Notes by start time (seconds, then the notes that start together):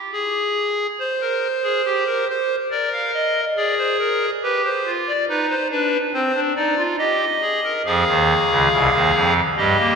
0.13 G#4
1.00 C5
1.21 A#4
1.63 G#4
1.86 G4
2.07 A#4
2.29 C5
2.71 A#4 D5
2.93 F5
3.14 D#5
3.56 G#4 D5
3.78 C5
4.00 A#4
4.43 G4 B4
4.65 C5
4.86 F4
5.08 D5
5.29 D#4 B4
5.49 C5
5.71 D4 B4
6.14 C4 C5
6.34 D4
6.56 D#4 D5
6.77 F4
6.98 G4 D#5
7.42 G#4
7.64 A#4
7.85 F2 F3 G#4 F5
8.07 D#2 D#3
8.49 C#2 C#3
8.71 C2 C3
8.93 D#2 D#3
9.14 F2 F3
9.57 G2 G3 G4 D#5
9.78 A#3